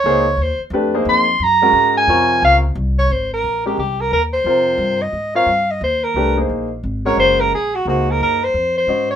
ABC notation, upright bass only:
X:1
M:3/4
L:1/8
Q:"Swing" 1/4=176
K:Db
V:1 name="Upright bass" clef=bass
D,,2 E,, z F,,2 | F,,2 G,,2 A,,2 | F,,2 D,,2 C,,2 | [K:Abmix] A,,,2 B,,,2 C,,2 |
E,,2 F,,2 =G,,2 | A,,2 =G,,2 E,,2 | C,,2 B,,,2 A,,,2 | G,,,2 B,,,2 D,,2 |
G,,2 F,,2 A,,2 |]